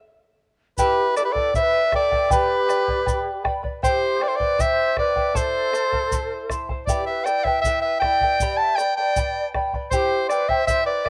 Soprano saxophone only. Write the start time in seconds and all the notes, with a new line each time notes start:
0.79 B4
1.17 D5
1.25 B4
1.32 D5
1.56 E5
1.95 D5
2.32 B4
3.84 C5
4.23 D5
4.28 C5
4.36 D5
4.61 E5
4.99 D5
5.36 C5
6.87 D5
7.06 E5
7.25 G5
7.44 E5
7.61 E5
7.81 E5
8.00 G5
8.57 A5
8.76 G5
8.97 G5
9.91 C5
10.29 D5
10.48 E5
10.67 E5
10.86 D5
11.05 E5